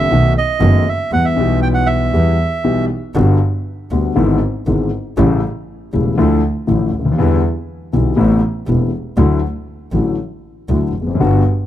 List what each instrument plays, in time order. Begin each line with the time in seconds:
Already playing: bandoneon E5
0.11 grand piano B1 B2 D#3 A3 B3 F#4, double bass B1
0.38 bandoneon D#5
0.59 grand piano F#1 F#2 D#3 A3 B3 F#4, double bass F#1
0.89 bandoneon E5
1.11 double bass E2, grand piano E2 E3 G3 B3 G4, bandoneon F#5
1.25 bandoneon E5
1.35 grand piano B1 B2 E3 G3 B3, double bass B1
1.40 grand piano G4
1.62 bandoneon G5
1.74 bandoneon F#5
1.86 bandoneon E5
2.13 grand piano E2 E3 G3 B3 G4, double bass E2
2.64 grand piano B1 B2 E3 G3 B3 G4
3.15 double bass G1, grand piano G1 G2 D3 G3 B3 F#4
3.91 double bass D2, grand piano D2 D3 G3 B3 F#4
4.15 double bass G#1, grand piano G#1 G#2 D3 G#3 B3 E4
4.67 double bass G#1, grand piano G#1 G#2 D3 G#3 B3 E4
5.17 double bass A1, grand piano A1 A2 C#3 G3 A3 E4
5.93 grand piano E1 E2 C#3 G3 A3 E4, double bass E1
6.18 grand piano D2 D3 F3 A3 E4, double bass D2
6.67 grand piano A1 A2 D3 F3 A3 E4, double bass A1
6.94 double bass D2
6.99 grand piano C#2
7.05 grand piano D2
7.12 grand piano D#2
7.18 grand piano E2 D3 E3 G3 B3 E4, double bass E2
7.93 grand piano B1 B2 D3 G3 B3 E4, double bass B1
8.16 grand piano A1 A2 C3 A3 B3 E4, double bass A1
8.68 grand piano E1 E2 C3 A3 B3 E4, double bass E1
9.17 double bass D2, grand piano D2 D3 F#3 A3 E4
9.92 double bass A1, grand piano A1 A2 D3 F#3 A3 E4
10.69 grand piano D2 D3 F#3 A3 E4, double bass D2
10.94 double bass F1
11.01 grand piano E2
11.07 grand piano F2
11.15 grand piano F#2
11.19 double bass G1, grand piano G1 G2 D3 G3 B3 F#4